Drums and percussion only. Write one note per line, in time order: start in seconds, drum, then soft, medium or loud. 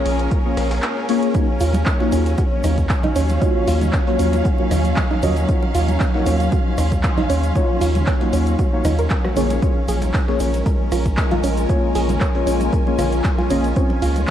0.05 open hi-hat loud
0.05 ride medium
0.05 shaker medium
0.19 closed hi-hat medium
0.31 kick loud
0.31 closed hi-hat medium
0.31 shaker medium
0.57 cross-stick medium
0.57 snare loud
0.57 open hi-hat loud
0.57 ride medium
0.57 shaker medium
0.71 snare loud
0.71 open hi-hat medium
0.71 shaker medium
0.82 snare loud
0.82 clap loud
0.82 closed hi-hat medium
0.82 shaker medium
0.97 snare soft
1.09 open hi-hat loud
1.09 ride medium
1.09 shaker medium
1.23 closed hi-hat medium
1.34 kick loud
1.34 closed hi-hat medium
1.34 muted conga medium
1.34 shaker soft
1.34 shaker medium
1.60 open hi-hat loud
1.60 ride medium
1.60 shaker medium
1.74 closed hi-hat medium
1.74 muted conga medium
1.74 high conga loud
1.74 shaker medium
1.86 kick loud
1.86 snare loud
1.86 clap loud
1.86 closed hi-hat medium
1.86 shaker medium
1.86 shaker soft
2.00 snare medium
2.00 muted conga medium
2.12 open hi-hat loud
2.12 ride medium
2.12 shaker loud
2.12 shaker medium
2.26 closed hi-hat soft
2.26 closed hi-hat medium
2.26 shaker medium
2.38 kick loud
2.38 closed hi-hat medium
2.38 muted conga medium
2.38 high conga medium
2.38 shaker soft
2.38 shaker medium
2.64 cross-stick medium
2.64 open hi-hat loud
2.64 ride medium
2.64 muted conga medium
2.64 shaker loud
2.64 shaker medium
2.78 kick medium
2.78 closed hi-hat medium
2.78 closed hi-hat soft
2.78 shaker soft
2.89 kick loud
2.89 snare loud
2.89 clap loud
2.89 closed hi-hat medium
2.89 shaker medium
2.89 shaker soft
3.03 closed hi-hat soft
3.03 muted conga medium
3.03 high conga medium
3.03 low conga medium
3.16 open hi-hat loud
3.16 ride medium
3.16 shaker medium
3.29 closed hi-hat medium
3.29 muted conga medium
3.29 shaker medium
3.42 kick loud
3.42 closed hi-hat medium
3.42 shaker medium
3.42 shaker soft
3.68 open hi-hat medium
3.68 open hi-hat loud
3.68 ride medium
3.68 muted conga medium
3.68 shaker loud
3.81 closed hi-hat medium
3.81 high conga loud
3.81 low conga medium
3.81 shaker medium
3.93 kick loud
3.93 snare loud
3.93 clap loud
3.93 closed hi-hat medium
3.93 muted conga medium
3.93 shaker medium
3.93 shaker soft
4.07 closed hi-hat soft
4.19 open hi-hat loud
4.19 ride medium
4.19 shaker medium
4.19 shaker loud
4.33 closed hi-hat medium
4.33 muted conga medium
4.33 shaker medium
4.45 kick loud
4.45 closed hi-hat medium
4.45 high conga medium
4.45 shaker soft
4.45 shaker medium
4.58 muted conga medium
4.71 cross-stick medium
4.71 snare medium
4.71 open hi-hat loud
4.71 ride medium
4.71 low conga medium
4.71 shaker medium
4.71 shaker loud
4.84 closed hi-hat medium
4.84 shaker medium
4.96 kick loud
4.96 snare loud
4.96 clap loud
4.96 closed hi-hat medium
4.96 muted conga medium
4.96 shaker medium
4.96 shaker soft
5.11 snare soft
5.11 high conga medium
5.22 open hi-hat loud
5.22 ride medium
5.22 muted conga medium
5.22 low conga loud
5.22 shaker loud
5.22 shaker medium
5.36 closed hi-hat medium
5.36 shaker medium
5.49 kick loud
5.49 closed hi-hat medium
5.49 shaker medium
5.49 shaker soft
5.62 muted conga medium
5.75 open hi-hat loud
5.75 ride medium
5.75 shaker medium
5.75 shaker loud
5.88 closed hi-hat medium
5.88 muted conga medium
5.88 high conga medium
5.88 shaker medium
6.00 kick loud
6.00 snare loud
6.00 clap loud
6.00 closed hi-hat medium
6.00 shaker medium
6.00 shaker soft
6.14 snare medium
6.26 open hi-hat loud
6.26 ride medium
6.26 muted conga medium
6.26 shaker loud
6.26 shaker medium
6.40 closed hi-hat medium
6.40 closed hi-hat soft
6.40 shaker medium
6.52 kick loud
6.52 closed hi-hat medium
6.52 muted conga medium
6.52 high conga medium
6.52 shaker soft
6.52 shaker medium
6.78 cross-stick medium
6.78 open hi-hat loud
6.78 ride medium
6.78 shaker loud
6.78 shaker medium
6.92 kick medium
6.92 closed hi-hat medium
6.92 closed hi-hat soft
6.92 muted conga medium
6.92 shaker medium
7.03 kick loud
7.03 snare loud
7.03 clap loud
7.03 closed hi-hat medium
7.03 shaker soft
7.03 shaker medium
7.17 closed hi-hat soft
7.17 muted conga medium
7.17 high conga loud
7.17 low conga medium
7.30 open hi-hat loud
7.30 ride medium
7.30 shaker medium
7.30 shaker loud
7.44 closed hi-hat medium
7.44 shaker medium
7.56 kick loud
7.56 closed hi-hat medium
7.56 muted conga medium
7.56 shaker medium
7.56 shaker soft
7.81 open hi-hat loud
7.81 open hi-hat medium
7.81 ride medium
7.81 muted conga medium
7.81 shaker loud
7.95 closed hi-hat medium
7.95 high conga loud
7.95 low conga medium
7.95 shaker medium
8.07 kick loud
8.07 snare loud
8.07 clap loud
8.07 closed hi-hat medium
8.07 shaker medium
8.07 shaker soft
8.21 closed hi-hat soft
8.21 muted conga medium
8.33 open hi-hat loud
8.33 ride medium
8.33 shaker medium
8.46 closed hi-hat medium
8.46 muted conga soft
8.46 shaker medium
8.59 kick loud
8.59 closed hi-hat medium
8.59 high conga medium
8.59 shaker medium
8.59 shaker soft
8.85 cross-stick medium
8.85 snare medium
8.85 open hi-hat loud
8.85 ride medium
8.85 muted conga medium
8.85 low conga loud
8.85 shaker loud
8.85 shaker medium
8.98 closed hi-hat medium
8.98 shaker medium
9.10 kick loud
9.10 snare loud
9.10 clap loud
9.10 closed hi-hat medium
9.10 muted conga medium
9.10 shaker soft
9.10 shaker medium
9.25 cross-stick medium
9.25 snare soft
9.25 high conga loud
9.37 open hi-hat loud
9.37 ride medium
9.37 low conga medium
9.37 shaker medium
9.50 closed hi-hat medium
9.50 muted conga medium
9.50 shaker medium
9.62 kick loud
9.62 closed hi-hat medium
9.62 muted conga medium
9.62 shaker medium
9.62 shaker soft
9.88 open hi-hat loud
9.88 ride medium
9.88 shaker medium
9.88 shaker loud
10.02 closed hi-hat medium
10.02 muted conga medium
10.02 high conga loud
10.02 shaker medium
10.14 kick loud
10.14 snare loud
10.14 clap loud
10.14 closed hi-hat medium
10.14 shaker medium
10.14 shaker soft
10.28 snare medium
10.28 muted conga soft
10.40 open hi-hat loud
10.40 ride medium
10.40 shaker medium
10.54 closed hi-hat soft
10.54 closed hi-hat medium
10.54 shaker medium
10.66 kick loud
10.66 closed hi-hat medium
10.66 muted conga medium
10.66 high conga medium
10.66 shaker medium
10.66 shaker soft
10.92 cross-stick medium
10.92 open hi-hat loud
10.92 ride medium
10.92 muted conga medium
10.92 shaker medium
11.05 kick medium
11.05 closed hi-hat soft
11.05 closed hi-hat medium
11.05 shaker medium
11.17 kick loud
11.17 snare loud
11.17 clap loud
11.17 closed hi-hat medium
11.17 shaker medium
11.17 shaker soft
11.31 closed hi-hat soft
11.31 muted conga medium
11.31 high conga loud
11.31 low conga medium
11.44 open hi-hat loud
11.44 ride medium
11.44 shaker medium
11.57 closed hi-hat medium
11.57 muted conga medium
11.57 shaker medium
11.69 kick loud
11.69 closed hi-hat medium
11.69 shaker soft
11.69 shaker medium
11.95 open hi-hat medium
11.95 open hi-hat loud
11.95 ride medium
11.95 muted conga medium
11.95 shaker medium
12.09 closed hi-hat medium
12.09 high conga medium
12.09 low conga medium
12.09 shaker soft
12.21 kick loud
12.21 snare loud
12.21 clap loud
12.21 closed hi-hat medium
12.21 muted conga medium
12.21 shaker medium
12.21 shaker soft
12.35 closed hi-hat soft
12.47 open hi-hat loud
12.47 ride medium
12.47 shaker medium
12.47 shaker loud
12.60 closed hi-hat medium
12.60 muted conga medium
12.60 shaker medium
12.73 kick loud
12.73 closed hi-hat medium
12.73 high conga medium
12.73 shaker medium
12.73 shaker soft
12.87 muted conga soft
12.99 cross-stick medium
12.99 snare medium
12.99 open hi-hat loud
12.99 ride medium
12.99 low conga loud
12.99 shaker medium
13.12 closed hi-hat medium
13.12 shaker soft
13.24 kick loud
13.24 snare loud
13.24 clap loud
13.24 closed hi-hat medium
13.24 muted conga medium
13.24 shaker loud
13.24 shaker soft
13.38 snare soft
13.38 high conga medium
13.50 open hi-hat loud
13.50 ride medium
13.50 muted conga medium
13.50 low conga medium
13.50 shaker medium
13.64 closed hi-hat medium
13.64 shaker soft
13.76 kick loud
13.76 closed hi-hat medium
13.76 shaker medium
13.76 shaker soft
13.90 muted conga medium
14.02 open hi-hat loud
14.02 ride medium
14.02 shaker medium
14.16 closed hi-hat medium
14.16 muted conga medium
14.16 high conga medium
14.16 shaker soft